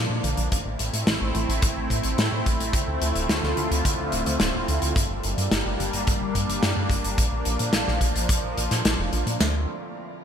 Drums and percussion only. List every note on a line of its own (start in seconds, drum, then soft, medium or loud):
0.24 closed hi-hat medium
0.37 closed hi-hat medium
0.52 kick loud
0.52 closed hi-hat medium
0.79 closed hi-hat medium
0.94 closed hi-hat medium
1.07 snare loud
1.07 closed hi-hat medium
1.35 closed hi-hat medium
1.50 closed hi-hat medium
1.62 kick loud
1.62 closed hi-hat loud
1.90 kick medium
1.90 closed hi-hat medium
2.03 closed hi-hat medium
2.18 snare loud
2.18 closed hi-hat medium
2.46 kick medium
2.46 closed hi-hat medium
2.60 closed hi-hat medium
2.73 kick loud
2.73 closed hi-hat medium
3.02 closed hi-hat medium
3.15 closed hi-hat medium
3.29 snare loud
3.29 closed hi-hat medium
3.43 snare soft
3.57 closed hi-hat medium
3.72 closed hi-hat medium
3.85 kick loud
3.85 closed hi-hat loud
4.12 closed hi-hat medium
4.26 closed hi-hat medium
4.40 snare loud
4.40 closed hi-hat medium
4.68 closed hi-hat medium
4.82 closed hi-hat medium
4.96 kick loud
4.96 closed hi-hat loud
5.23 closed hi-hat medium
5.38 closed hi-hat medium
5.51 snare loud
5.51 closed hi-hat medium
5.80 closed hi-hat medium
5.93 closed hi-hat medium
6.07 kick loud
6.07 closed hi-hat medium
6.35 kick medium
6.35 closed hi-hat medium
6.50 closed hi-hat medium
6.63 snare loud
6.63 closed hi-hat loud
6.90 kick loud
6.90 closed hi-hat medium
7.04 closed hi-hat medium
7.18 kick loud
7.18 closed hi-hat loud
7.45 closed hi-hat medium
7.59 closed hi-hat medium
7.73 snare loud
7.73 closed hi-hat loud
7.88 snare soft
8.01 kick medium
8.01 closed hi-hat medium
8.16 closed hi-hat medium
8.29 kick loud
8.29 closed hi-hat loud
8.57 closed hi-hat medium
8.71 snare soft
8.71 closed hi-hat medium
8.85 snare loud
8.85 closed hi-hat loud
9.13 closed hi-hat medium
9.27 closed hi-hat medium
9.40 snare loud
9.40 ride bell medium